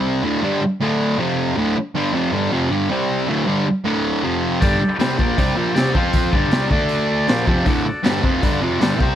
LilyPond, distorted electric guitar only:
\new Staff \with { instrumentName = "Distorted electric guitar" } { \clef bass \time 4/4 \key g \major \tempo 4 = 157 <c g c'>8 <d, a, d>8 <g, d g>8 r8 <d, a, d>4 <f, c f>4 | <d, a, d>8 r8 <g, d g>8 <f, c f>8 <g, d g>8 <f, c f>8 <g, d g>8 <c g c'>8~ | <c g c'>8 <d, a, d>8 <g, d g>8 r8 <d, a, d>4 <f, c f>4 | <g, d g>8 r8 <c g c'>8 <bes, f bes>8 <c g c'>8 <bes, f bes>8 <c g c'>8 <f c' f'>8~ |
<f c' f'>8 <g, d g>8 <c g c'>8 <d a d'>4. <bes, f bes>8 <f, c f>8 | <d, a, d>8 r8 <g, d g>8 <f, c f>8 <g, d g>8 <f, c f>8 <g, d g>8 <c g c'>8 | }